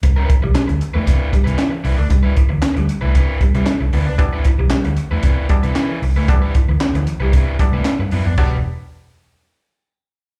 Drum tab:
CC |----------------|----------------|----------------|----------------|
HH |x-x-xxx-x-xxx-o-|x-x-xxx-x-xxx-o-|x-x-xxx-x-xxx-o-|x-x-xxx-x-x-x-o-|
CP |----x-------x---|----x-------x---|----x-------x---|----x-------x---|
SD |----o-------o---|----o-------o---|----o-------o---|----o-------o---|
BD |o-o-----o-o-----|o-o-----o-o-----|o-o-----o-o-----|o-o-----o-o-----|

CC |x---------------|
HH |----------------|
CP |----------------|
SD |----------------|
BD |o---------------|